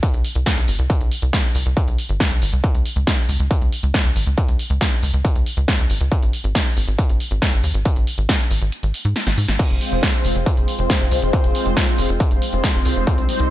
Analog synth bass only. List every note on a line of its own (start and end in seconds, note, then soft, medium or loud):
0.14 0.23 C2 medium
0.36 0.45 C2 medium
0.57 0.66 C2 medium
0.68 0.77 G1 medium
0.79 0.88 C2 medium
1.01 1.10 C2 medium
1.22 1.32 C2 medium
1.55 1.64 C2 loud
1.66 1.75 C2 medium
1.88 1.97 C2 medium
2.10 2.19 G1 medium
2.31 2.40 C2 medium
2.42 2.51 G1 medium
2.53 2.62 C2 medium
2.75 2.84 C#2 medium
2.96 3.05 C#2 medium
3.29 3.38 C#2 medium
3.40 3.49 C#2 medium
3.62 3.71 C#2 medium
3.83 3.93 C#2 medium
4.05 4.14 C#2 medium
4.16 4.25 G#1 medium
4.27 4.36 C#2 medium
4.49 4.58 C#2 medium
4.70 4.79 C#2 medium
5.03 5.12 C#2 medium
5.14 5.23 C#2 medium
5.35 5.45 C#2 medium
5.57 5.66 C#2 medium
5.79 5.88 C#2 medium
5.90 5.99 G#1 medium
6.01 6.10 C#2 medium
6.23 6.32 G#1 medium
6.44 6.53 G#1 medium
6.77 6.86 G#1 medium
6.88 6.97 G#1 medium
7.09 7.19 G#1 medium
7.31 7.40 G#1 medium
7.53 7.62 G#1 medium
7.64 7.73 D#2 medium
7.74 7.84 G#1 medium
7.96 8.05 G#1 medium
8.18 8.27 G#1 medium
8.51 8.60 G#1 medium
8.62 8.71 G#1 medium
8.83 8.92 G#1 medium
9.05 9.14 G#2 medium
9.27 9.36 G#1 medium
9.38 9.47 G#2 medium
9.49 9.58 G#1 medium
9.70 9.79 F1 medium
9.92 10.01 F1 medium
10.25 10.34 F1 medium
10.35 10.45 F1 medium
10.57 10.66 F1 medium
10.79 10.88 F1 medium
11.01 11.10 F1 medium
11.12 11.21 C2 medium
11.22 11.32 F1 medium
11.44 11.53 F1 medium
11.66 11.75 F1 medium
11.98 12.08 F1 loud
12.09 12.19 F1 medium
12.31 12.40 F1 medium
12.53 12.62 F1 medium
12.75 12.84 F1 medium
12.86 12.95 C2 medium
12.96 13.06 F1 medium
13.18 13.27 C2 medium
13.40 13.49 C2 medium